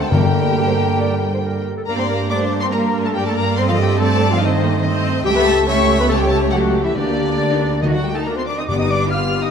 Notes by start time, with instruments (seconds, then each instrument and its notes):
Already playing: double bass section D2, french horn section A3, clarinet C5, trumpet C5
0.00 cello section A3, violin section A4 A5, flute section A5
0.10 double bass section G2, timpani G2, bassoon D3, french horn section G3 D4, cello section G3, viola section A#3 G4, violin section G4 G5, trumpet A#4, clarinet A#4, flute section G5
0.56 clarinet A#4
0.67 clarinet C5
0.79 clarinet A#4
1.00 clarinet D5
1.34 clarinet C5
1.45 clarinet A#4
1.77 clarinet A4
1.86 double bass section G2, viola section A#3 G4, french horn section A#3 D4, cello section A#3, clarinet A#4, violin section D5 A#5, flute section A#5
1.98 cello section C4, clarinet C5, violin section C6, flute section C6
2.08 cello section A#3, clarinet A#4, violin section A#5, flute section A#5
2.30 viola section A3, cello section D4, violin section C5 D6, clarinet D5, flute section D6
2.61 cello section C4, clarinet C5, violin section C6, flute section C6
2.72 viola section G3 A#4, cello section A#3, clarinet A#4, violin section A#4 A#5, flute section A#5
3.05 cello section A3, clarinet A4, violin section A5, flute section A5
3.15 cello section G3, viola section A#3, clarinet G4, violin section D5 G5, flute section G5
3.26 cello section A3, clarinet A4, violin section A5, flute section A5
3.36 cello section A#3, clarinet A#4, violin section A#5, flute section A#5
3.56 french horn section A3 C4, viola section C4 A4, cello section C4, clarinet C5, violin section D#5 C6, flute section C6
3.68 cello section F3, clarinet F4, violin section F5, flute section F5
3.79 cello section G3, clarinet G4, violin section G5, flute section G5
3.99 cello section A3, clarinet A4, violin section D5 A5, flute section A5
4.31 cello section F3, clarinet F4, violin section F5, flute section F5
4.41 cello section D#3, viola section C4 C5, clarinet D#4, violin section C5 D#5, flute section D#5
4.63 viola section A#3
4.83 viola section C4 C5, violin section D#5
5.25 double bass section C#2, cello section G3, french horn section A3 G4, viola section A3 G4, clarinet G4, violin section E5 G5, flute section G5
5.36 cello section B3, clarinet B4, violin section B5, flute section B5
5.46 cello section A3, clarinet A4, violin section A5, flute section A5
5.66 french horn section A3 G4, viola section A3 G4, cello section C#4, clarinet C#5, violin section E5 C#6, flute section C#6
6.00 cello section B3, clarinet B4, violin section B5, flute section B5
6.09 viola section A3 G4, cello section A3, french horn section A3 G4, clarinet A4, violin section C#5 A5, flute section A5
6.19 cello section G3, clarinet G4, violin section G5, flute section G5
6.29 cello section A3, clarinet A4, violin section A5
6.33 flute section A5
6.50 cello section F#3, clarinet F#4, violin section A4 F#5
6.55 flute section F#5
6.84 cello section E3, clarinet E4, violin section E5, flute section E5
6.94 double bass section D2, cello section D3, timpani D3, french horn section A#3 G4, viola section A#3 G4, clarinet D4, violin section A#4 D5, flute section D5
7.40 viola section D4
7.50 viola section D#4
7.60 viola section D4
7.82 timpani D3, cello section D#3, french horn section A3 F#4, clarinet D#4, viola section F#4, violin section D#5, flute section D#5
7.92 cello section F#3, clarinet F#4, violin section F#5, flute section F#5
8.03 cello section G3, clarinet G4, flute section G5, violin section G5
8.14 cello section A3, viola section D#4, clarinet A4, flute section A5, violin section A5
8.25 cello section A#3, viola section D4, clarinet A#4, flute section A#5, violin section A#5
8.36 cello section C4, clarinet C5, flute section C6, violin section C6
8.46 cello section D4, clarinet D5, flute section D6, violin section D6
8.58 viola section C4, cello section D#4, clarinet D#5, flute section D#6, violin section D#6
8.67 double bass section G1, timpani G2, viola section B3 G4, french horn section B3 G4, cello section D4, violin section B4 D6, clarinet D5, flute section D6
8.78 cello section D#4, clarinet D#5, flute section D#6, violin section D#6
8.88 cello section D4, clarinet D5, flute section D6, violin section D6
9.11 french horn section B3 G4, cello section F4, clarinet F5, flute section F6, violin section F6
9.42 cello section D#4, clarinet D#5, flute section D#6, violin section D#6